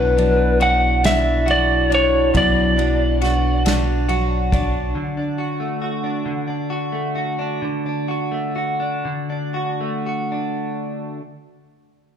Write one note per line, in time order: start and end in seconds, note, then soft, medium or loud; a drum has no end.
0.00 2.30 B1 loud
0.00 2.33 B2 medium
0.00 0.17 F#3 medium
0.00 0.17 D4 medium
0.00 1.04 D4 medium
0.00 3.17 E4 medium
0.00 0.60 F#4 medium
0.00 0.57 B4 medium
0.17 1.47 F#3 medium
0.17 1.03 D4 medium
0.17 ride soft
0.60 3.20 B3 medium
0.60 1.46 F#4 medium
0.60 1.02 F#5 loud
0.60 ride soft
1.04 1.90 D4 medium
1.04 1.91 D4 medium
1.04 1.49 E5 medium
1.04 snare loud
1.04 ride medium
1.46 2.33 F#3 medium
1.46 3.21 F#4 medium
1.46 ride soft
1.51 1.94 D5 medium
1.90 2.76 D4 medium
1.90 2.34 D4 medium
1.90 ride soft
1.95 2.37 C#5 medium
2.34 4.92 B1 loud
2.34 4.95 B2 medium
2.34 2.77 F#3 medium
2.34 3.65 D4 medium
2.34 3.62 D5 medium
2.34 kick medium
2.34 ride medium
2.76 4.09 F#3 medium
2.76 3.65 D4 medium
2.76 ride soft
3.21 5.05 B3 medium
3.21 3.65 D4 medium
3.21 4.08 F#4 medium
3.21 snare soft
3.21 ride soft
3.65 4.52 D4 medium
3.65 4.25 F#4 medium
3.65 snare loud
3.65 ride medium
4.09 5.55 F#3 medium
4.09 5.38 F#4 medium
4.09 ride soft
4.52 5.17 D4 medium
4.52 5.55 D4 medium
4.52 4.93 D4 medium
4.52 kick loud
4.52 ride medium
4.95 6.25 D3 medium
5.17 6.03 D4 soft
5.38 5.81 F#4 soft
5.60 6.92 A3 soft
5.82 6.70 F#4 soft
6.04 6.47 D4 soft
6.26 7.62 D3 medium
6.48 7.38 D4 soft
6.70 7.15 F#4 medium
6.92 8.31 A3 soft
7.16 8.08 F#4 soft
7.39 7.86 D4 medium
7.62 9.05 D3 medium
7.86 8.79 D4 soft
8.08 8.55 F#4 soft
8.31 9.80 A3 soft
8.56 9.54 F#4 soft
8.80 9.29 D4 soft
9.05 11.20 D3 medium
9.30 10.31 D4 soft
9.54 10.06 F#4 soft
9.81 11.20 A3 soft
10.06 11.20 F#4 soft
10.32 11.19 D4 soft